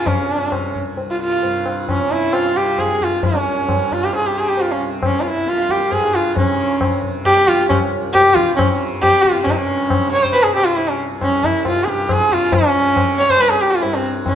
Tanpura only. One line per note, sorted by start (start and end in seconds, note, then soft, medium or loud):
0.00 0.85 C2 medium
0.00 1.42 G2 medium
0.00 0.28 C3 medium
0.28 1.98 C3 medium
0.85 3.10 C2 medium
1.42 3.66 G2 medium
1.98 2.55 C3 medium
2.55 4.25 C3 medium
3.11 5.35 C2 medium
3.67 5.92 G2 medium
4.25 4.80 C3 medium
4.80 6.49 C3 medium
5.35 7.59 C2 medium
5.93 8.13 G2 medium
6.49 7.05 C3 medium
7.05 8.69 C3 medium
7.59 11.11 C2 medium
8.13 9.47 G2 medium
8.69 9.25 C3 medium
9.25 10.01 C3 medium
9.47 11.66 G2 medium
10.01 10.56 C3 medium
10.56 12.20 C3 medium
11.11 13.29 C2 medium
11.66 13.83 G2 medium
12.20 12.75 C3 medium
12.75 14.35 C3 medium
13.30 14.35 C2 medium
13.84 14.35 G2 medium